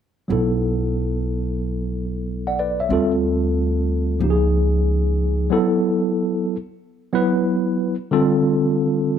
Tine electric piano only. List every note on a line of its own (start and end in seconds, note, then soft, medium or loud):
0.28 2.86 F#3 medium
0.28 2.87 B3 medium
0.28 2.87 E4 medium
0.32 2.88 A4 medium
2.47 2.58 D5 soft
2.47 2.58 F#5 medium
2.59 2.79 B4 medium
2.59 2.79 D5 medium
2.80 3.11 C#5 soft
2.80 3.11 E5 medium
2.89 4.18 G3 medium
2.89 4.18 C4 medium
2.89 4.19 F4 medium
2.89 4.20 A4 medium
4.20 5.48 F3 medium
4.20 5.49 A#3 medium
4.20 5.50 D#4 medium
4.24 4.31 G4 medium
4.30 5.54 G#4 medium
5.50 6.55 F#3 medium
5.50 6.56 B3 medium
5.50 6.56 E4 medium
5.50 6.56 A4 medium
7.12 7.94 F#3 medium
7.12 7.94 B3 medium
7.12 7.95 E4 medium
7.12 7.95 B4 medium
8.11 9.16 D3 medium
8.11 9.16 G3 medium
8.11 9.17 C4 medium
8.11 9.17 F4 medium
8.11 9.17 A4 medium